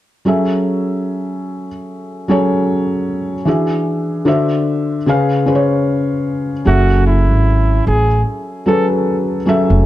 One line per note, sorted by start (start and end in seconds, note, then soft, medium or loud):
0.25 1.67 F#3 medium
0.25 1.67 C#4 medium
0.25 1.67 G#4 medium
0.25 1.68 A4 medium
0.25 1.68 E5 medium
2.28 3.33 F#3 medium
2.28 3.34 C#4 medium
2.28 3.34 G#4 medium
2.28 3.35 A4 medium
2.28 3.35 C#5 medium
3.45 4.26 E3 medium
3.45 4.24 D4 medium
3.45 4.25 F#4 medium
3.45 4.27 G#4 medium
3.45 4.26 E5 medium
4.25 4.96 D3 medium
4.25 4.97 D4 medium
4.25 4.97 F#4 medium
4.25 4.97 C5 medium
4.25 4.98 E5 medium
5.06 5.42 C#3 medium
5.06 5.42 C#4 medium
5.06 5.42 G#4 medium
5.06 5.43 B4 medium
5.06 5.43 F5 medium
5.46 6.52 C#3 medium
5.46 6.52 C#4 medium
5.46 6.53 G#4 medium
5.46 6.53 B4 medium
5.46 5.55 C5 medium
5.55 6.57 C#5 medium
6.65 7.30 F#1 medium
6.65 8.06 F#3 medium
6.65 8.07 C#4 medium
6.65 7.02 F#4 loud
6.65 8.07 G#4 medium
6.65 8.08 A4 medium
6.65 8.08 E5 medium
7.07 7.83 E4 medium
7.30 7.79 G#1 medium
7.87 8.21 A1 medium
7.87 8.22 G#4 medium
8.66 9.37 F#3 medium
8.66 9.37 C#4 medium
8.66 9.37 G#4 medium
8.66 8.87 A4 medium
8.66 9.38 A4 medium
8.66 9.38 B4 medium
9.46 9.81 F#3 medium
9.46 9.82 C#4 medium
9.46 9.82 G#4 medium
9.46 9.83 A4 medium
9.46 9.83 E5 medium
9.70 9.84 F1 medium